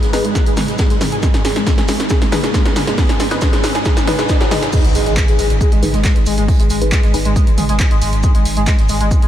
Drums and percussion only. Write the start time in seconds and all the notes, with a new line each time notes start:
0.02 snare, closed hi-hat
0.13 snare, open hi-hat, shaker
0.25 closed hi-hat
0.35 kick, snare, closed hi-hat, shaker
0.46 closed hi-hat
0.57 snare, open hi-hat, mid tom, shaker
0.68 snare, closed hi-hat
0.78 kick, snare, closed hi-hat, shaker
0.90 snare, closed hi-hat
1.01 snare, open hi-hat, mid tom, shaker
1.12 closed hi-hat
1.23 kick, snare, closed hi-hat, shaker
1.34 snare, closed hi-hat
1.45 snare, open hi-hat, shaker
1.56 snare, closed hi-hat
1.66 kick, snare, closed hi-hat, shaker
1.78 snare, closed hi-hat
1.88 snare, open hi-hat, shaker
2.00 snare, closed hi-hat
2.09 kick, snare, closed hi-hat, shaker
2.22 snare, closed hi-hat
2.32 snare, open hi-hat, mid tom, shaker
2.43 snare, closed hi-hat
2.54 kick, snare, closed hi-hat, shaker
2.65 snare, closed hi-hat
2.76 snare, open hi-hat, mid tom, shaker
2.87 snare, closed hi-hat
2.97 kick, snare, closed hi-hat, open hi-hat
3.09 snare, closed hi-hat
3.20 snare, open hi-hat, shaker
3.31 snare, closed hi-hat
3.41 kick, snare, closed hi-hat, shaker
3.53 snare, closed hi-hat
3.64 snare, open hi-hat, shaker
3.75 snare, closed hi-hat
3.85 kick, snare, closed hi-hat, shaker
3.97 snare, closed hi-hat, shaker
4.07 snare, open hi-hat, mid tom
4.19 snare, closed hi-hat, shaker
4.29 kick, snare, closed hi-hat, shaker
4.41 snare, closed hi-hat
4.51 snare, open hi-hat, mid tom, shaker
4.63 snare, closed hi-hat
4.73 kick, closed hi-hat, crash, shaker
4.84 closed hi-hat
4.95 open hi-hat, shaker
5.06 closed hi-hat
5.17 kick, snare, clap, closed hi-hat, shaker
5.28 snare, closed hi-hat
5.39 open hi-hat, shaker
5.50 closed hi-hat
5.61 kick, closed hi-hat, shaker
5.72 closed hi-hat
5.83 open hi-hat, mid tom, shaker
5.94 snare, closed hi-hat
6.04 kick, snare, clap, closed hi-hat, shaker
6.15 snare, closed hi-hat
6.26 open hi-hat, shaker
6.38 closed hi-hat
6.48 kick, closed hi-hat, open hi-hat
6.59 closed hi-hat
6.70 open hi-hat, shaker
6.81 closed hi-hat
6.92 kick, snare, clap, closed hi-hat, shaker
7.03 snare, closed hi-hat
7.14 open hi-hat, shaker
7.25 closed hi-hat
7.36 kick, closed hi-hat, shaker
7.47 closed hi-hat
7.58 open hi-hat, mid tom, shaker
7.69 snare, closed hi-hat
7.79 kick, snare, clap, closed hi-hat, shaker
7.91 snare, closed hi-hat
8.02 open hi-hat, shaker
8.13 closed hi-hat
8.23 kick, closed hi-hat, shaker
8.35 closed hi-hat
8.45 open hi-hat, shaker
8.57 closed hi-hat
8.67 kick, snare, clap, closed hi-hat, shaker
8.78 snare, closed hi-hat
8.89 open hi-hat, shaker
9.01 closed hi-hat
9.11 kick, closed hi-hat, shaker
9.22 closed hi-hat